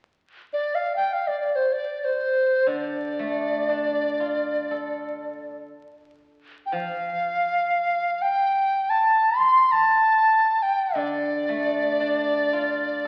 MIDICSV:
0, 0, Header, 1, 3, 480
1, 0, Start_track
1, 0, Tempo, 500000
1, 12552, End_track
2, 0, Start_track
2, 0, Title_t, "Dizi"
2, 0, Program_c, 0, 73
2, 509, Note_on_c, 0, 74, 58
2, 720, Note_on_c, 0, 77, 66
2, 734, Note_off_c, 0, 74, 0
2, 916, Note_off_c, 0, 77, 0
2, 922, Note_on_c, 0, 79, 63
2, 1085, Note_on_c, 0, 77, 63
2, 1100, Note_off_c, 0, 79, 0
2, 1223, Note_on_c, 0, 74, 57
2, 1237, Note_off_c, 0, 77, 0
2, 1341, Note_off_c, 0, 74, 0
2, 1347, Note_on_c, 0, 74, 56
2, 1494, Note_on_c, 0, 72, 56
2, 1509, Note_off_c, 0, 74, 0
2, 1659, Note_on_c, 0, 74, 56
2, 1673, Note_off_c, 0, 72, 0
2, 1963, Note_on_c, 0, 72, 54
2, 1978, Note_off_c, 0, 74, 0
2, 2569, Note_on_c, 0, 74, 69
2, 2583, Note_off_c, 0, 72, 0
2, 5368, Note_off_c, 0, 74, 0
2, 6394, Note_on_c, 0, 79, 45
2, 6469, Note_on_c, 0, 77, 75
2, 6483, Note_off_c, 0, 79, 0
2, 7889, Note_on_c, 0, 79, 75
2, 7904, Note_off_c, 0, 77, 0
2, 8542, Note_on_c, 0, 81, 73
2, 8556, Note_off_c, 0, 79, 0
2, 8999, Note_on_c, 0, 84, 80
2, 9013, Note_off_c, 0, 81, 0
2, 9328, Note_on_c, 0, 81, 82
2, 9343, Note_off_c, 0, 84, 0
2, 10199, Note_on_c, 0, 79, 67
2, 10213, Note_off_c, 0, 81, 0
2, 10526, Note_on_c, 0, 74, 78
2, 10540, Note_off_c, 0, 79, 0
2, 12552, Note_off_c, 0, 74, 0
2, 12552, End_track
3, 0, Start_track
3, 0, Title_t, "Guzheng"
3, 0, Program_c, 1, 107
3, 2558, Note_on_c, 1, 50, 44
3, 3065, Note_on_c, 1, 57, 37
3, 3543, Note_on_c, 1, 62, 34
3, 4032, Note_on_c, 1, 65, 33
3, 4522, Note_on_c, 1, 69, 37
3, 5013, Note_off_c, 1, 57, 0
3, 5490, Note_off_c, 1, 50, 0
3, 5494, Note_off_c, 1, 62, 0
3, 5983, Note_off_c, 1, 65, 0
3, 6453, Note_on_c, 1, 53, 47
3, 6473, Note_off_c, 1, 69, 0
3, 9384, Note_off_c, 1, 53, 0
3, 10513, Note_on_c, 1, 50, 50
3, 11029, Note_on_c, 1, 57, 41
3, 11521, Note_on_c, 1, 62, 38
3, 12028, Note_on_c, 1, 65, 38
3, 12552, Note_off_c, 1, 50, 0
3, 12552, Note_off_c, 1, 57, 0
3, 12552, Note_off_c, 1, 62, 0
3, 12552, Note_off_c, 1, 65, 0
3, 12552, End_track
0, 0, End_of_file